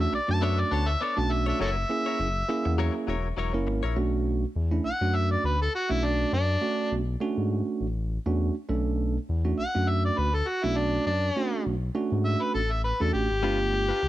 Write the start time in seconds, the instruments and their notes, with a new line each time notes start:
0.00 tine electric piano A3 C#4 D4 F#4, harmonica E5
0.13 analog synth bass B1, harmonica D5, muted clean electric guitar stroke
0.28 analog synth bass F#2, tine electric piano A3 C#4 D4 F#4, harmonica A5, muted clean electric guitar stroke
0.42 clean electric guitar B3 D4 A4 C#5, harmonica E5
0.58 harmonica D5, muted clean electric guitar stroke
0.71 analog synth bass D2, clean electric guitar B3 D4 A4 C#5, harmonica A5
0.88 harmonica E5
1.01 clean electric guitar B3 D4 A4 C#5, harmonica D5
1.17 analog synth bass B1, tine electric piano A3 C#4 D4 F#4, harmonica A5, muted clean electric guitar stroke
1.30 harmonica E5, muted clean electric guitar stroke
1.46 clean electric guitar D4 A4 C#5, harmonica E5
1.60 analog synth bass F#1, clean electric guitar F#3 E4 A#4 C#5, harmonica A4 C#5 E5
1.77 muted clean electric guitar stroke
1.89 tine electric piano A#3 C#4 E4 G#4, muted clean electric guitar stroke
2.06 clean electric guitar E4 A#4 C#5
2.19 analog synth bass F#1, muted clean electric guitar stroke
2.49 tine electric piano A#3 C#4 E4 G#4 G#5, muted clean electric guitar stroke
2.65 analog synth bass E2, tine electric piano F#5, muted clean electric guitar stroke
2.78 clean electric guitar F#3 E4 A#4 C#5, tine electric piano E5
2.95 muted clean electric guitar stroke
3.07 analog synth bass E1, clean electric guitar F#3 E4 A#4 C#5
3.37 analog synth bass E1, clean electric guitar F#3 E4 A#4 C#5, tine electric piano C#5
3.54 analog synth bass F#1, tine electric piano A#3 C#4 E4 A#4, muted clean electric guitar stroke
3.67 analog synth bass G#1, muted clean electric guitar stroke
3.83 analog synth bass A#1, clean electric guitar E4 A#4 C#5
3.96 analog synth bass B1, tine electric piano A3 C#4 D4 F#4
4.56 analog synth bass E2
4.71 tine electric piano A3 C#4 D4 E4
4.85 analog synth bass B1, harmonica F#5
5.01 analog synth bass F#2, tine electric piano A3 C#4 D4 F#4
5.15 harmonica E5
5.32 harmonica D5
5.44 analog synth bass D2, harmonica B4
5.62 harmonica A4
5.75 harmonica F#4
5.90 analog synth bass B1, tine electric piano A3 C#4 D4 F#4, harmonica E4
6.04 harmonica D4
6.33 analog synth bass F#2, harmonica D4
6.61 tine electric piano A3 C#4 D4 F#4
6.92 analog synth bass B1
7.21 tine electric piano A3 C#4 D4 F#4
7.37 analog synth bass G#2
7.81 analog synth bass A1
8.26 analog synth bass E2, tine electric piano A3 C#4 D4 F#4
8.69 analog synth bass B1, tine electric piano A3 C#4 D4 A4
9.29 analog synth bass E2
9.45 tine electric piano A3 C#4 D4 F#4
9.59 analog synth bass B1, harmonica F#5
9.75 analog synth bass F#2, tine electric piano A3 C#4 D4 F#4
9.89 harmonica E5
10.05 harmonica D5
10.18 analog synth bass D2, harmonica B4
10.34 harmonica A4
10.48 harmonica F#4
10.64 analog synth bass B1, tine electric piano A3 C#4 D4 F#4, harmonica E4
10.77 harmonica D4
11.06 analog synth bass F#2, harmonica D4
11.36 tine electric piano A3 C#4 D4 F#4
11.66 analog synth bass B1
11.95 tine electric piano A3 C#4 D4 F#4
12.12 analog synth bass G#2
12.25 harmonica E5
12.42 harmonica B4
12.54 analog synth bass A1, harmonica A4
12.71 harmonica E5
12.84 harmonica B4
13.00 analog synth bass E2, tine electric piano A3 C#4 D4 F#4, harmonica A4
13.14 analog synth bass A1, harmonica G4
13.30 analog synth bass G#1
13.43 analog synth bass G1, clean electric guitar G3 D4 F4 B4, tine electric piano A3 B3 D4 F4
13.60 muted clean electric guitar stroke
13.73 muted clean electric guitar stroke
13.89 clean electric guitar D4 F4 B4
14.02 analog synth bass C#2, muted clean electric guitar stroke